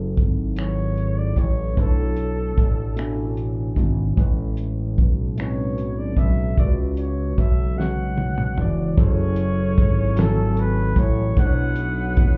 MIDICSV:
0, 0, Header, 1, 6, 480
1, 0, Start_track
1, 0, Key_signature, 3, "minor"
1, 0, Tempo, 800000
1, 1064, Time_signature, 6, 3, 24, 8
1, 7424, End_track
2, 0, Start_track
2, 0, Title_t, "Flugelhorn"
2, 0, Program_c, 0, 56
2, 352, Note_on_c, 0, 73, 81
2, 712, Note_on_c, 0, 74, 82
2, 721, Note_off_c, 0, 73, 0
2, 834, Note_on_c, 0, 73, 80
2, 843, Note_off_c, 0, 74, 0
2, 1078, Note_on_c, 0, 69, 75
2, 1087, Note_off_c, 0, 73, 0
2, 2031, Note_off_c, 0, 69, 0
2, 3237, Note_on_c, 0, 73, 71
2, 3591, Note_on_c, 0, 74, 70
2, 3600, Note_off_c, 0, 73, 0
2, 3712, Note_on_c, 0, 76, 80
2, 3721, Note_off_c, 0, 74, 0
2, 3948, Note_off_c, 0, 76, 0
2, 3955, Note_on_c, 0, 74, 75
2, 4051, Note_off_c, 0, 74, 0
2, 4190, Note_on_c, 0, 73, 74
2, 4435, Note_on_c, 0, 76, 84
2, 4444, Note_off_c, 0, 73, 0
2, 4669, Note_on_c, 0, 78, 88
2, 4678, Note_off_c, 0, 76, 0
2, 5147, Note_off_c, 0, 78, 0
2, 5163, Note_on_c, 0, 74, 76
2, 5378, Note_off_c, 0, 74, 0
2, 5402, Note_on_c, 0, 73, 93
2, 6122, Note_on_c, 0, 69, 90
2, 6131, Note_off_c, 0, 73, 0
2, 6359, Note_on_c, 0, 71, 88
2, 6368, Note_off_c, 0, 69, 0
2, 6595, Note_on_c, 0, 73, 95
2, 6604, Note_off_c, 0, 71, 0
2, 6830, Note_off_c, 0, 73, 0
2, 6837, Note_on_c, 0, 78, 107
2, 7424, Note_off_c, 0, 78, 0
2, 7424, End_track
3, 0, Start_track
3, 0, Title_t, "Tine electric piano"
3, 0, Program_c, 1, 4
3, 0, Control_c, 1, 64, 127
3, 0, Note_on_c, 1, 54, 65
3, 0, Note_on_c, 1, 64, 59
3, 0, Note_on_c, 1, 68, 57
3, 0, Note_on_c, 1, 69, 74
3, 133, Note_off_c, 1, 54, 0
3, 137, Note_off_c, 1, 64, 0
3, 141, Note_off_c, 1, 68, 0
3, 145, Note_off_c, 1, 69, 0
3, 337, Note_on_c, 1, 54, 55
3, 346, Note_on_c, 1, 64, 51
3, 353, Note_on_c, 1, 68, 52
3, 361, Note_on_c, 1, 71, 66
3, 854, Note_off_c, 1, 54, 0
3, 859, Note_off_c, 1, 64, 0
3, 862, Note_off_c, 1, 68, 0
3, 867, Note_off_c, 1, 71, 0
3, 1057, Note_on_c, 1, 47, 63
3, 1066, Note_on_c, 1, 57, 57
3, 1070, Note_on_c, 1, 62, 55
3, 1073, Control_c, 1, 64, 0
3, 1076, Note_on_c, 1, 64, 54
3, 1081, Note_on_c, 1, 71, 52
3, 1112, Note_off_c, 1, 71, 0
3, 1119, Note_on_c, 1, 73, 68
3, 1161, Control_c, 1, 64, 127
3, 1574, Note_off_c, 1, 47, 0
3, 1579, Note_off_c, 1, 57, 0
3, 1581, Note_off_c, 1, 62, 0
3, 1584, Note_off_c, 1, 64, 0
3, 1606, Note_off_c, 1, 73, 0
3, 1775, Note_on_c, 1, 47, 71
3, 1781, Note_on_c, 1, 57, 62
3, 1788, Note_on_c, 1, 62, 65
3, 1794, Note_on_c, 1, 64, 64
3, 1798, Note_on_c, 1, 80, 77
3, 2294, Note_off_c, 1, 47, 0
3, 2296, Note_off_c, 1, 57, 0
3, 2300, Note_off_c, 1, 62, 0
3, 2303, Note_off_c, 1, 64, 0
3, 2305, Note_off_c, 1, 80, 0
3, 2495, Note_on_c, 1, 45, 76
3, 2501, Note_on_c, 1, 56, 69
3, 2509, Note_on_c, 1, 61, 72
3, 2513, Control_c, 1, 64, 0
3, 2518, Note_on_c, 1, 71, 80
3, 2621, Control_c, 1, 64, 127
3, 3013, Note_off_c, 1, 45, 0
3, 3016, Note_off_c, 1, 56, 0
3, 3020, Note_off_c, 1, 61, 0
3, 3025, Note_off_c, 1, 71, 0
3, 3215, Note_on_c, 1, 45, 61
3, 3225, Note_on_c, 1, 56, 55
3, 3233, Note_on_c, 1, 60, 45
3, 3241, Note_on_c, 1, 71, 69
3, 3268, Note_off_c, 1, 60, 0
3, 3272, Note_on_c, 1, 61, 59
3, 3733, Note_off_c, 1, 45, 0
3, 3738, Note_off_c, 1, 56, 0
3, 3746, Note_off_c, 1, 71, 0
3, 3762, Note_off_c, 1, 61, 0
3, 3940, Note_on_c, 1, 49, 65
3, 3948, Note_on_c, 1, 56, 54
3, 3951, Control_c, 1, 64, 0
3, 3954, Note_on_c, 1, 66, 61
3, 3965, Note_on_c, 1, 70, 54
3, 3994, Note_off_c, 1, 70, 0
3, 4001, Note_on_c, 1, 71, 69
3, 4063, Control_c, 1, 64, 127
3, 4456, Note_off_c, 1, 49, 0
3, 4460, Note_off_c, 1, 56, 0
3, 4463, Note_off_c, 1, 66, 0
3, 4486, Note_off_c, 1, 71, 0
3, 4660, Note_on_c, 1, 49, 62
3, 4666, Note_on_c, 1, 56, 59
3, 4673, Note_on_c, 1, 66, 57
3, 4681, Note_on_c, 1, 73, 67
3, 5176, Note_off_c, 1, 49, 0
3, 5179, Note_off_c, 1, 56, 0
3, 5182, Note_off_c, 1, 66, 0
3, 5187, Note_off_c, 1, 73, 0
3, 5374, Note_on_c, 1, 54, 70
3, 5381, Note_on_c, 1, 64, 66
3, 5391, Note_on_c, 1, 68, 65
3, 5393, Control_c, 1, 64, 0
3, 5398, Note_on_c, 1, 69, 80
3, 5487, Control_c, 1, 64, 127
3, 5893, Note_off_c, 1, 54, 0
3, 5897, Note_off_c, 1, 64, 0
3, 5901, Note_off_c, 1, 68, 0
3, 5905, Note_off_c, 1, 69, 0
3, 6098, Note_on_c, 1, 54, 76
3, 6107, Note_on_c, 1, 64, 69
3, 6112, Note_on_c, 1, 80, 67
3, 6121, Note_on_c, 1, 69, 82
3, 6615, Note_off_c, 1, 54, 0
3, 6619, Note_off_c, 1, 64, 0
3, 6622, Note_off_c, 1, 80, 0
3, 6626, Note_off_c, 1, 69, 0
3, 6818, Note_on_c, 1, 47, 71
3, 6821, Note_on_c, 1, 57, 64
3, 6829, Note_on_c, 1, 62, 65
3, 6831, Control_c, 1, 64, 0
3, 6835, Note_on_c, 1, 64, 66
3, 6842, Note_on_c, 1, 72, 70
3, 6872, Note_off_c, 1, 72, 0
3, 6879, Note_on_c, 1, 73, 80
3, 6925, Control_c, 1, 64, 127
3, 7335, Note_off_c, 1, 47, 0
3, 7336, Note_off_c, 1, 57, 0
3, 7340, Note_off_c, 1, 62, 0
3, 7343, Note_off_c, 1, 64, 0
3, 7366, Note_off_c, 1, 73, 0
3, 7424, End_track
4, 0, Start_track
4, 0, Title_t, "Horn section"
4, 0, Program_c, 2, 61
4, 5389, Note_on_c, 2, 52, 67
4, 5390, Note_on_c, 2, 61, 70
4, 5390, Note_on_c, 2, 68, 69
4, 5390, Note_on_c, 2, 80, 75
4, 6563, Note_off_c, 2, 52, 0
4, 6563, Note_off_c, 2, 61, 0
4, 6563, Note_off_c, 2, 68, 0
4, 6563, Note_off_c, 2, 80, 0
4, 6824, Note_on_c, 2, 54, 66
4, 6824, Note_on_c, 2, 64, 68
4, 6825, Note_on_c, 2, 59, 73
4, 6825, Note_on_c, 2, 71, 79
4, 7424, Note_off_c, 2, 54, 0
4, 7424, Note_off_c, 2, 59, 0
4, 7424, Note_off_c, 2, 64, 0
4, 7424, Note_off_c, 2, 71, 0
4, 7424, End_track
5, 0, Start_track
5, 0, Title_t, "Analog synth bass"
5, 0, Program_c, 3, 38
5, 0, Note_on_c, 3, 30, 84
5, 107, Note_on_c, 3, 32, 80
5, 116, Note_off_c, 3, 30, 0
5, 802, Note_off_c, 3, 32, 0
5, 821, Note_on_c, 3, 33, 81
5, 1039, Note_off_c, 3, 33, 0
5, 1067, Note_on_c, 3, 35, 85
5, 1521, Note_off_c, 3, 35, 0
5, 1549, Note_on_c, 3, 33, 73
5, 2243, Note_off_c, 3, 33, 0
5, 2260, Note_on_c, 3, 32, 82
5, 2478, Note_off_c, 3, 32, 0
5, 2508, Note_on_c, 3, 33, 85
5, 2990, Note_on_c, 3, 35, 83
5, 2999, Note_off_c, 3, 33, 0
5, 3683, Note_off_c, 3, 35, 0
5, 3702, Note_on_c, 3, 35, 86
5, 3949, Note_on_c, 3, 37, 88
5, 3958, Note_off_c, 3, 35, 0
5, 4403, Note_off_c, 3, 37, 0
5, 4431, Note_on_c, 3, 35, 88
5, 5124, Note_off_c, 3, 35, 0
5, 5154, Note_on_c, 3, 28, 89
5, 5366, Note_off_c, 3, 28, 0
5, 5389, Note_on_c, 3, 30, 95
5, 5869, Note_on_c, 3, 32, 93
5, 5878, Note_off_c, 3, 30, 0
5, 6563, Note_off_c, 3, 32, 0
5, 6580, Note_on_c, 3, 33, 91
5, 6798, Note_off_c, 3, 33, 0
5, 6824, Note_on_c, 3, 35, 103
5, 7307, Note_on_c, 3, 33, 99
5, 7316, Note_off_c, 3, 35, 0
5, 7424, Note_off_c, 3, 33, 0
5, 7424, End_track
6, 0, Start_track
6, 0, Title_t, "Drums"
6, 104, Note_on_c, 9, 42, 45
6, 105, Note_on_c, 9, 36, 79
6, 163, Note_off_c, 9, 42, 0
6, 165, Note_off_c, 9, 36, 0
6, 339, Note_on_c, 9, 42, 59
6, 352, Note_on_c, 9, 26, 86
6, 399, Note_off_c, 9, 42, 0
6, 412, Note_off_c, 9, 26, 0
6, 585, Note_on_c, 9, 42, 36
6, 645, Note_off_c, 9, 42, 0
6, 818, Note_on_c, 9, 36, 65
6, 825, Note_on_c, 9, 42, 45
6, 878, Note_off_c, 9, 36, 0
6, 885, Note_off_c, 9, 42, 0
6, 1064, Note_on_c, 9, 36, 95
6, 1067, Note_on_c, 9, 42, 54
6, 1124, Note_off_c, 9, 36, 0
6, 1127, Note_off_c, 9, 42, 0
6, 1299, Note_on_c, 9, 42, 47
6, 1359, Note_off_c, 9, 42, 0
6, 1546, Note_on_c, 9, 36, 81
6, 1546, Note_on_c, 9, 42, 49
6, 1606, Note_off_c, 9, 36, 0
6, 1606, Note_off_c, 9, 42, 0
6, 1781, Note_on_c, 9, 42, 62
6, 1794, Note_on_c, 9, 26, 86
6, 1841, Note_off_c, 9, 42, 0
6, 1854, Note_off_c, 9, 26, 0
6, 2023, Note_on_c, 9, 42, 39
6, 2083, Note_off_c, 9, 42, 0
6, 2258, Note_on_c, 9, 36, 67
6, 2265, Note_on_c, 9, 42, 48
6, 2318, Note_off_c, 9, 36, 0
6, 2325, Note_off_c, 9, 42, 0
6, 2504, Note_on_c, 9, 36, 100
6, 2508, Note_on_c, 9, 42, 55
6, 2564, Note_off_c, 9, 36, 0
6, 2568, Note_off_c, 9, 42, 0
6, 2742, Note_on_c, 9, 42, 49
6, 2802, Note_off_c, 9, 42, 0
6, 2989, Note_on_c, 9, 36, 86
6, 2990, Note_on_c, 9, 42, 48
6, 3049, Note_off_c, 9, 36, 0
6, 3050, Note_off_c, 9, 42, 0
6, 3226, Note_on_c, 9, 42, 65
6, 3239, Note_on_c, 9, 26, 91
6, 3286, Note_off_c, 9, 42, 0
6, 3299, Note_off_c, 9, 26, 0
6, 3468, Note_on_c, 9, 42, 41
6, 3528, Note_off_c, 9, 42, 0
6, 3700, Note_on_c, 9, 36, 71
6, 3705, Note_on_c, 9, 42, 47
6, 3760, Note_off_c, 9, 36, 0
6, 3765, Note_off_c, 9, 42, 0
6, 3945, Note_on_c, 9, 36, 100
6, 3950, Note_on_c, 9, 42, 59
6, 4005, Note_off_c, 9, 36, 0
6, 4010, Note_off_c, 9, 42, 0
6, 4182, Note_on_c, 9, 42, 51
6, 4242, Note_off_c, 9, 42, 0
6, 4428, Note_on_c, 9, 36, 83
6, 4429, Note_on_c, 9, 42, 49
6, 4488, Note_off_c, 9, 36, 0
6, 4489, Note_off_c, 9, 42, 0
6, 4678, Note_on_c, 9, 38, 45
6, 4738, Note_off_c, 9, 38, 0
6, 4905, Note_on_c, 9, 48, 63
6, 4965, Note_off_c, 9, 48, 0
6, 5027, Note_on_c, 9, 47, 59
6, 5087, Note_off_c, 9, 47, 0
6, 5146, Note_on_c, 9, 45, 78
6, 5206, Note_off_c, 9, 45, 0
6, 5385, Note_on_c, 9, 36, 115
6, 5387, Note_on_c, 9, 42, 70
6, 5445, Note_off_c, 9, 36, 0
6, 5447, Note_off_c, 9, 42, 0
6, 5617, Note_on_c, 9, 42, 64
6, 5677, Note_off_c, 9, 42, 0
6, 5866, Note_on_c, 9, 42, 58
6, 5867, Note_on_c, 9, 36, 102
6, 5926, Note_off_c, 9, 42, 0
6, 5927, Note_off_c, 9, 36, 0
6, 6100, Note_on_c, 9, 42, 81
6, 6113, Note_on_c, 9, 38, 105
6, 6160, Note_off_c, 9, 42, 0
6, 6173, Note_off_c, 9, 38, 0
6, 6341, Note_on_c, 9, 42, 47
6, 6401, Note_off_c, 9, 42, 0
6, 6577, Note_on_c, 9, 36, 87
6, 6581, Note_on_c, 9, 42, 58
6, 6637, Note_off_c, 9, 36, 0
6, 6641, Note_off_c, 9, 42, 0
6, 6821, Note_on_c, 9, 36, 122
6, 6821, Note_on_c, 9, 42, 68
6, 6881, Note_off_c, 9, 36, 0
6, 6881, Note_off_c, 9, 42, 0
6, 7054, Note_on_c, 9, 42, 63
6, 7114, Note_off_c, 9, 42, 0
6, 7301, Note_on_c, 9, 42, 58
6, 7304, Note_on_c, 9, 36, 104
6, 7361, Note_off_c, 9, 42, 0
6, 7364, Note_off_c, 9, 36, 0
6, 7424, End_track
0, 0, End_of_file